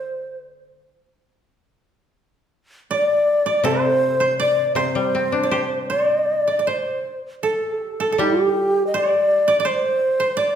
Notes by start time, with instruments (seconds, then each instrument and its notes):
Already playing: koto D3 C5 D5, shakuhachi C5
2.91 koto D5, shakuhachi D5
3.46 koto D5
3.60 koto C3, shakuhachi D5
3.64 shakuhachi C5, koto C5
4.20 koto C5
4.39 shakuhachi D5, koto D5
4.75 koto C3 C5, shakuhachi C5
4.95 koto G3
5.15 koto C4
5.32 koto D4
5.43 koto D5
5.51 koto G4 C5
5.90 koto D5, shakuhachi D5
6.47 koto D5
6.59 koto D5
6.67 koto C5, shakuhachi C5
7.43 koto A4, shakuhachi A4
7.77 koto G4
8.00 koto A4
8.12 koto A4
8.18 koto G3 G4, shakuhachi G4
8.87 shakuhachi D#5
8.94 koto D5, shakuhachi D5
9.48 koto D5
9.60 koto D5
9.65 koto C5, shakuhachi C5
10.20 koto C5
10.37 koto D5, shakuhachi D5